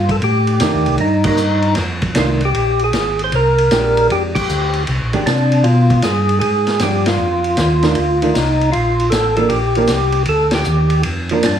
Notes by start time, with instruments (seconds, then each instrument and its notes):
Already playing: tonewheel organ G2 F4
0.09 tonewheel organ A4, kick, ride
0.22 tonewheel organ A2 G4, ride
0.47 ride
0.60 tonewheel organ F2, hollow-body jazz guitar D#3 A3 D4, snare, hi-hat pedal, ride
0.74 tonewheel organ D#2
0.86 tonewheel organ C2, ride
0.98 tonewheel organ G2 D#4, ride
1.24 hollow-body jazz guitar G3 A#3 D#4, tonewheel organ D#4, kick, crash
1.37 tonewheel organ G2, hi-hat pedal
1.62 ride
1.75 tonewheel organ F2, snare, ride
2.02 kick, ride
2.14 tonewheel organ C2, hollow-body jazz guitar D#3 A3 D4, snare, hi-hat pedal, ride
2.19 tonewheel organ F4
2.41 ride
2.45 tonewheel organ G4
2.53 tonewheel organ A#1, ride
2.79 ride
2.84 tonewheel organ G#4
2.93 tonewheel organ G#1, snare, hi-hat pedal, ride
3.19 ride
3.24 tonewheel organ C5
3.32 tonewheel organ C2 A#4, ride
3.58 ride
3.71 tonewheel organ A#1, hollow-body jazz guitar G#3 D4 G4, snare, hi-hat pedal, ride
3.97 ride
4.10 tonewheel organ F2 G4, ride
4.35 tonewheel organ G4, kick, crash
4.49 tonewheel organ D2, hi-hat pedal
4.73 ride
4.87 tonewheel organ C2, ride
5.01 tonewheel organ A#1
5.13 tonewheel organ G#1, hollow-body jazz guitar G#3 D4 G4, ride
5.26 tonewheel organ C3 D4, snare, hi-hat pedal, ride
5.52 ride
5.64 tonewheel organ B2 F4, ride
5.90 kick, ride
6.02 tonewheel organ G2 G#4, snare, hi-hat pedal, ride
6.29 ride
6.40 tonewheel organ G#2 G#4, ride
6.67 snare, ride
6.79 tonewheel organ G2 G4, hollow-body jazz guitar F3 D4, snare, hi-hat pedal, ride
7.06 tonewheel organ F4, snare, ride
7.19 tonewheel organ F2
7.44 ride
7.57 tonewheel organ D#2, snare, hi-hat pedal, ride
7.83 hollow-body jazz guitar D#3 A3 D4, snare, ride
7.95 tonewheel organ D2, ride
8.22 hollow-body jazz guitar D#3 A3 D4, ride
8.34 tonewheel organ C2 D#4, snare, hi-hat pedal, ride
8.61 ride
8.72 tonewheel organ A#1 F4, ride
9.00 ride
9.10 tonewheel organ A1 A4, snare, hi-hat pedal, ride
9.37 hollow-body jazz guitar F3 A#3 D4, tonewheel organ A4, ride
9.49 tonewheel organ A#1 G4, ride
9.75 hollow-body jazz guitar F3 A#3 D4, ride
9.87 tonewheel organ C2, snare, hi-hat pedal, ride
10.12 ride
10.25 tonewheel organ D2 A4, ride
10.51 tonewheel organ G4, snare, ride
10.64 tonewheel organ D#2, hi-hat pedal
10.90 ride
11.03 tonewheel organ F2, ride
11.29 hollow-body jazz guitar F3 A#3 D4, ride
11.43 tonewheel organ G2 D4, snare, hi-hat pedal, ride